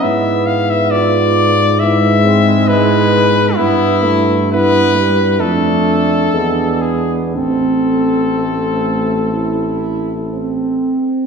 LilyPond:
<<
  \new Staff \with { instrumentName = "Cornet" } { \time 4/4 \key a \minor \tempo 4 = 63 e''8 f''16 e''16 d''4 e''4 b'4 | e'4 b'4 a'4. gis'8 | a'2.~ a'8 r8 | }
  \new Staff \with { instrumentName = "French horn section" } { \time 4/4 \key a \minor e'4 f'4 e'4 e'4 | e'4 e'4 d'4 d'4 | c'4 a4 e'4 c'4 | }
  \new Staff \with { instrumentName = "Euphonium" } { \time 4/4 \key a \minor b2 b8 c'8 b4 | b4 b4 a4 gis4 | a2.~ a8 r8 | }
  \new Staff \with { instrumentName = "Trombone" } { \time 4/4 \key a \minor b4. r8 gis2 | b8 a8 b8 g8 a4 b4 | c'2.~ c'8 r8 | }
  \new Staff \with { instrumentName = "Tuba" } { \clef bass \time 4/4 \key a \minor gis,1 | g,2 f,4 e,4 | a,,2.~ a,,8 r8 | }
>>